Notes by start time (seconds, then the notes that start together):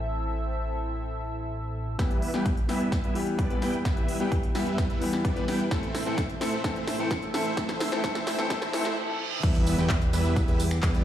Already playing: A1 E3 A3 C4 E4 A4 E5
1.98 E2 E3 G3 B3 E4 G4 B4 E5, kick, snare, closed hi-hat, riser
2.11 closed hi-hat
2.22 open hi-hat
2.33 E3 G3 B3 E4 G4 B4 G5, snare, closed hi-hat
2.46 kick, closed hi-hat
2.57 closed hi-hat
2.68 E3 G3 B3 E4 G4 B4 E5, snare, open hi-hat
2.81 closed hi-hat
2.92 kick, snare, closed hi-hat
3.04 G3 B3 E4 B4 E5, closed hi-hat
3.15 E3 G3 B3 G4, open hi-hat
3.27 closed hi-hat
3.39 G3 B3 E4 B4 D5, kick, closed hi-hat
3.50 E3 G3 B3 B4, closed hi-hat
3.62 G3 B3 E4 B4 G5, snare, open hi-hat
3.74 closed hi-hat
3.85 E3 G3 B3 E4 G4 B4 E5, kick, snare, closed hi-hat
3.97 closed hi-hat
4.08 open hi-hat
4.20 E3 G3 B3 E4 G4 B4 G5, closed hi-hat
4.32 kick, closed hi-hat
4.43 closed hi-hat
4.54 E3 G3 B3 E4 G4 B4 E5, snare, open hi-hat
4.67 closed hi-hat
4.78 kick, snare, closed hi-hat
4.90 G3 B3 E4 B4 E5, closed hi-hat
5.01 E3 G3 B3 G4, open hi-hat
5.13 snare, closed hi-hat
5.25 G3 B3 E4 B4 D5, kick, closed hi-hat
5.36 E3 G3 B3 B4, closed hi-hat
5.48 G3 B3 E4 B4 G5, snare, open hi-hat
5.60 closed hi-hat
5.71 A2 E3 A3 C4 E4 A4 C5 E5, kick, snare, closed hi-hat
5.83 closed hi-hat
5.95 snare, open hi-hat
6.05 E3 A3 C4 E4 A4 C5 G5, closed hi-hat
6.18 kick, snare, closed hi-hat
6.29 closed hi-hat
6.40 E3 A3 C4 E4 A4 C5 E5, snare, open hi-hat
6.53 closed hi-hat
6.64 E3 A3 C4 E4 A4 E5, kick, snare, closed hi-hat
6.76 closed hi-hat
6.87 snare, open hi-hat
6.99 E3 A3 C4 E4 A4 C5 G5, closed hi-hat
7.11 kick, snare, closed hi-hat
7.22 closed hi-hat
7.33 E3 A3 C4 E4 A4 C5 E5, snare, open hi-hat
7.57 E3 A3 C4 E4 A4 E5, kick, snare, closed hi-hat
7.69 snare, closed hi-hat
7.80 snare, open hi-hat
7.92 E3 A3 C4 E4 A4 C5 G5, snare
8.03 E3 A3 C4 E4 A4 C5 E5, kick, snare, closed hi-hat
8.15 snare, closed hi-hat
8.27 snare, open hi-hat
8.38 E3 A3 C4 E4 A4 C5 G5, snare
8.50 E3 A3 C4 E4 A4 C5 E5, kick, snare, closed hi-hat, reverse cymbal
8.62 snare, closed hi-hat
8.73 E3 A3 C4 E4 A4 C5 E5, snare, open hi-hat
8.85 snare
9.43 E2 G3 B3 E4 G4 B4 E5, kick, closed hi-hat, tambourine, crash, impact
9.55 closed hi-hat, tambourine
9.67 open hi-hat, tambourine
9.78 E2 G3 B3 E4 B4 G5, closed hi-hat, tambourine
9.90 kick, clap, closed hi-hat, tambourine
10.01 closed hi-hat, tambourine
10.13 E2 G3 B3 E4 B4 E5, open hi-hat, tambourine
10.25 closed hi-hat, tambourine
10.36 kick, closed hi-hat, tambourine
10.48 E2 G3 B3 E4 B4 E5, closed hi-hat, tambourine
10.60 open hi-hat, tambourine
10.71 finger snap, tambourine
10.83 E2 G3 B3 E4 B4 D5, kick, clap, closed hi-hat, tambourine
10.95 closed hi-hat, tambourine